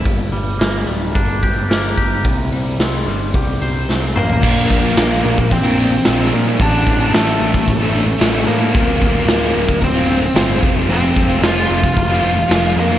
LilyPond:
<<
  \new Staff \with { instrumentName = "Lead electric guitar" } { \time 4/4 \key bes \lydian \tempo 4 = 111 r1 | r2. r8 <bes bes'>8~ | <bes bes'>2 <c' c''>4. r8 | <d' d''>4 <a a'>2~ <a a'>8 <bes bes'>8~ |
<bes bes'>2 <c' c''>4. r8 | <c' c''>4 <f' f''>2~ <f' f''>8 <bes bes'>8 | }
  \new Staff \with { instrumentName = "Distorted electric guitar" } { \time 4/4 \key bes \lydian r1 | r1 | <bes, f bes d' f' bes'>8. <bes d' f' bes'>16 <bes, f bes d' f' bes'>8 <bes d' f' bes'>8. <bes d' f' bes'>16 <bes d' f' bes'>8 <bes, f bes d' f' bes'>16 <bes d' f' bes'>8 <bes d' f' bes'>16 | <a, e a d' e' a'>8. <a d' e' a'>16 <a, e a d' e' a'>8 <a d' e' a'>8. <a d' e' a'>16 <a d' e' a'>8 <a, e a d' e' a'>16 <a d' e' a'>8 <a d' e' a'>16 |
<d, a, d a c' f'>8. <d a c' f'>16 <d, a, d a c' f'>8 <d a c' f'>8. <d a c' f'>16 <d a c' f'>8 <d, a, d a c' f'>16 <d a c' f'>16 <f, c f a c' f'>16 <f a c' f'>16 | <f, c f a c' f'>8. <f a c' f'>16 <f, c f a c' f'>8 <f a c' f'>8. <f a c' f'>16 <f a c' f'>8 <f, c f a c' f'>16 <f a c' f'>8 <f a c' f'>16 | }
  \new Staff \with { instrumentName = "Clean electric guitar" } { \time 4/4 \key bes \lydian g,8 g8 bes8 g8 d'8 g'8 bes8 g'8 | c8 g8 c'8 g8 g'8 c''8 c'8 c''8 | r1 | r1 |
r1 | r1 | }
  \new Staff \with { instrumentName = "Picked electric bass" } { \clef bass \time 4/4 \key bes \lydian g,,8 g,,8 g,,8 d,,8 g,,8 g,,8 g,,8 g,,8 | c,8 c,8 c,8 g,,8 c,8 c,8 c,8 a,,8 | bes,,8 bes,,8 bes,,8 bes,,8 bes,,4 bes,,8 bes,8 | a,,8 a,,8 a,,8 a,,8 a,,4 a,,8 a,8 |
d,,8 d,,8 d,,8 d,,8 d,,4 g,,8 f,,8 | f,,8 f,,8 f,,8 f,,8 f,,4 f,,8 f,8 | }
  \new DrumStaff \with { instrumentName = "Drums" } \drummode { \time 4/4 <hho bd>8 hho8 <hho sn>8 hho8 <hho bd>8 <hho bd>8 <hho sn>8 <hho bd>8 | <hho bd>8 hho8 <hho sn>8 hho8 <hho bd>8 hho8 sn8 toml16 tomfh16 | <cymc bd>8 bd8 <hho sn>8. bd16 <hho bd>4 <hho sn>4 | <hho bd>8 bd8 <hho sn>8. bd16 <hho bd>4 <hho sn>4 |
<hho bd>8 bd8 <hho sn>8. bd16 <hho bd>4 <hho sn>8 bd8 | hho8 bd8 <hho sn>8. bd16 <hho bd>4 <hho sn>4 | }
>>